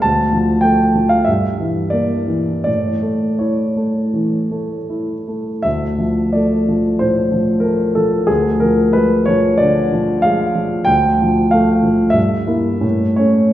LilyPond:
<<
  \new Staff \with { instrumentName = "Grand piano" } { \time 4/4 \key d \minor \tempo 4 = 91 a''4 g''8. f''16 e''4 d''4 | d''4 cis''2 r4 | e''4 d''4 c''4 bes'8 a'8 | aes'8 bes'8 b'8 cis''8 d''4 f''4 |
g''4 f''4 e''4. cis''8 | }
  \new Staff \with { instrumentName = "Grand piano" } { \clef bass \time 4/4 \key d \minor d,8 f8 a8 f8 g,8 e8 bes8 e8 | a,8 a8 e'8 a8 e8 a8 e'8 a8 | d,8 f8 a8 f8 a,8 f8 a8 f8 | d,8 f8 aes8 f8 d8 f8 aes8 f8 |
d,8 f8 a8 f8 g,8 <bes e'>8 a,8 <a cis'>8 | }
>>